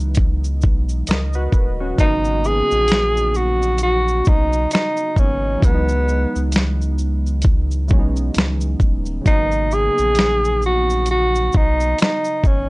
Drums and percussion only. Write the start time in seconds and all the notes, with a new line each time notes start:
0.00 shaker
0.15 kick, closed hi-hat, shaker
0.44 shaker
0.61 kick, shaker
0.89 shaker
1.07 snare, closed hi-hat, shaker
1.33 shaker
1.52 kick, shaker
1.98 kick, closed hi-hat, shaker
2.25 shaker
2.44 shaker
2.71 shaker
2.88 snare, closed hi-hat, shaker
3.17 shaker
3.35 shaker
3.62 shaker
3.78 closed hi-hat, shaker
4.08 shaker
4.25 kick, shaker
4.53 shaker
4.71 snare, closed hi-hat, shaker
4.97 shaker
5.16 kick, shaker
5.62 kick, closed hi-hat, shaker
5.89 shaker
6.08 shaker
6.36 shaker
6.52 snare, closed hi-hat, shaker
6.82 shaker
6.98 shaker
7.27 shaker
7.42 kick, closed hi-hat, shaker
7.71 shaker
7.88 kick, shaker
8.16 shaker
8.34 snare, closed hi-hat, shaker
8.61 shaker
8.80 kick, shaker
9.06 shaker
9.26 kick, closed hi-hat, shaker
9.52 shaker
9.71 shaker
9.98 shaker
10.15 snare, closed hi-hat, shaker
10.45 shaker
10.62 shaker
10.90 shaker
11.06 closed hi-hat, shaker
11.35 shaker
11.52 kick, shaker
11.80 shaker
11.98 snare, closed hi-hat, shaker
12.25 shaker
12.44 kick, shaker